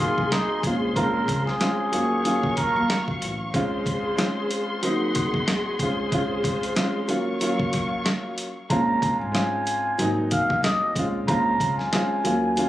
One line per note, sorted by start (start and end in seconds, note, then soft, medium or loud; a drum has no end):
0.00 0.57 F#3 medium
0.00 0.57 A#3 medium
0.00 0.58 C4 medium
0.00 0.58 D#4 loud
0.00 0.28 F4 medium
0.00 1.89 G#4 medium
0.00 0.63 G#5 medium
0.00 1.89 C6 medium
0.00 kick loud
0.18 0.28 C2 medium
0.18 kick medium
0.32 0.61 D#4 medium
0.32 cross-stick medium
0.32 snare loud
0.32 closed hi-hat medium
0.63 0.88 A#1 loud
0.63 0.94 G#3 medium
0.63 0.94 C4 medium
0.63 0.95 C#4 medium
0.63 0.95 F4 medium
0.63 1.92 C5 medium
0.63 kick medium
0.63 closed hi-hat medium
0.95 1.21 A#1 loud
0.95 1.56 G#3 medium
0.95 1.56 C4 medium
0.95 1.57 C#4 medium
0.95 1.57 F4 loud
0.95 1.44 A#4 loud
0.95 kick loud
0.95 closed hi-hat medium
1.28 1.43 C#2 medium
1.28 kick loud
1.28 closed hi-hat medium
1.47 2.53 G#4 medium
1.47 snare soft
1.60 1.92 G#3 medium
1.60 1.93 C4 medium
1.60 1.92 C#4 medium
1.60 1.93 F4 loud
1.60 cross-stick medium
1.60 snare loud
1.60 closed hi-hat medium
1.92 2.43 D#2 loud
1.92 2.22 F#3 medium
1.92 3.52 F#3 medium
1.92 2.23 A#3 medium
1.92 2.23 C#4 medium
1.92 2.23 F4 medium
1.92 3.52 F5 medium
1.92 3.52 C#6 medium
1.92 closed hi-hat medium
2.24 3.30 F#3 medium
2.24 3.30 A#3 medium
2.24 3.30 C#4 medium
2.24 3.31 F4 loud
2.24 closed hi-hat medium
2.43 kick medium
2.57 3.05 A#4 medium
2.57 kick loud
2.57 closed hi-hat medium
2.76 2.86 D#2 medium
2.90 cross-stick medium
2.90 snare loud
2.90 closed hi-hat medium
3.08 kick loud
3.22 3.47 A1 medium
3.22 closed hi-hat medium
3.54 4.14 G#3 loud
3.54 4.14 C4 medium
3.54 4.15 C#4 medium
3.54 4.15 F4 loud
3.54 4.82 G#4 medium
3.54 4.82 C5 medium
3.54 7.05 C6 medium
3.54 kick loud
3.54 closed hi-hat medium
3.86 kick loud
3.86 closed hi-hat medium
4.15 4.81 G#3 medium
4.15 4.82 C4 medium
4.15 4.82 C#4 medium
4.15 4.83 F4 loud
4.15 cross-stick medium
4.15 snare loud
4.15 closed hi-hat medium
4.51 closed hi-hat medium
4.82 5.73 F#3 medium
4.82 5.73 A#3 medium
4.82 5.74 C4 medium
4.82 5.74 D#4 loud
4.82 7.06 G#4 medium
4.82 5.79 F#5 medium
4.82 closed hi-hat medium
5.15 kick loud
5.15 closed hi-hat medium
5.34 kick medium
5.48 cross-stick medium
5.48 snare loud
5.48 closed hi-hat medium
5.79 6.10 G#3 medium
5.79 6.11 C4 medium
5.79 6.11 C#4 medium
5.79 6.11 F4 medium
5.79 7.07 C5 medium
5.79 kick loud
5.79 closed hi-hat medium
6.12 6.72 G#3 medium
6.12 6.72 C4 medium
6.12 6.73 C#4 medium
6.12 6.73 F4 loud
6.12 kick loud
6.12 closed hi-hat medium
6.44 kick loud
6.44 closed hi-hat medium
6.63 closed hi-hat medium
6.76 7.08 G#3 loud
6.76 7.09 C4 medium
6.76 7.08 C#4 medium
6.76 7.09 F4 loud
6.76 cross-stick medium
6.76 snare loud
6.76 closed hi-hat medium
7.08 7.38 F#3 medium
7.08 8.69 F#3 medium
7.08 7.39 A#3 medium
7.08 7.39 C#4 medium
7.08 7.40 F4 medium
7.08 8.69 F5 medium
7.08 8.69 C#6 medium
7.08 closed hi-hat medium
7.41 8.46 F#3 medium
7.41 8.46 A#3 medium
7.41 8.47 C#4 medium
7.41 8.47 F4 loud
7.41 closed hi-hat loud
7.59 kick medium
7.73 kick medium
7.73 closed hi-hat medium
8.06 cross-stick medium
8.06 snare loud
8.06 closed hi-hat medium
8.38 closed hi-hat medium
8.70 9.09 A#1 loud
8.70 9.30 G#3 loud
8.70 9.30 C4 medium
8.70 9.31 C#4 medium
8.70 9.31 F4 loud
8.70 9.18 A#5 loud
8.70 kick loud
8.70 closed hi-hat medium
9.02 kick loud
9.02 closed hi-hat medium
9.20 9.95 G#1 medium
9.20 10.27 G#5 medium
9.32 9.98 G#3 loud
9.32 9.98 C4 medium
9.32 9.99 C#4 medium
9.32 9.99 F4 loud
9.32 cross-stick medium
9.32 snare loud
9.32 closed hi-hat medium
9.67 closed hi-hat medium
9.98 10.39 G#1 loud
9.98 10.89 F#3 medium
9.98 10.89 A#3 medium
9.98 10.90 C4 medium
9.98 10.90 D#4 loud
9.98 closed hi-hat loud
10.31 10.61 F5 medium
10.31 kick loud
10.31 closed hi-hat medium
10.50 10.61 C2 medium
10.50 kick loud
10.64 10.93 D#5 medium
10.64 cross-stick medium
10.64 snare loud
10.64 closed hi-hat medium
10.96 11.21 A#1 loud
10.96 11.26 G#3 medium
10.96 11.27 C4 medium
10.96 11.27 C#4 medium
10.96 11.27 F4 medium
10.96 kick medium
10.96 closed hi-hat medium
11.27 11.53 A#1 loud
11.27 11.88 G#3 loud
11.27 11.88 C4 medium
11.27 11.89 C#4 medium
11.27 11.89 F4 loud
11.27 11.76 A#5 loud
11.27 kick loud
11.27 closed hi-hat medium
11.60 11.75 C#2 medium
11.60 kick loud
11.60 closed hi-hat medium
11.78 12.69 G#5 medium
11.78 snare soft
11.92 12.25 G#3 medium
11.92 12.25 C4 medium
11.92 12.24 C#4 medium
11.92 12.25 F4 loud
11.92 cross-stick medium
11.92 snare loud
11.92 closed hi-hat medium
12.24 12.69 D#2 loud
12.24 12.54 F#3 loud
12.24 12.55 A#3 medium
12.24 12.55 C#4 medium
12.24 12.56 F4 loud
12.24 closed hi-hat medium
12.57 12.69 F#3 medium
12.57 12.69 A#3 medium
12.57 12.69 C#4 medium
12.57 12.69 F4 loud
12.57 closed hi-hat medium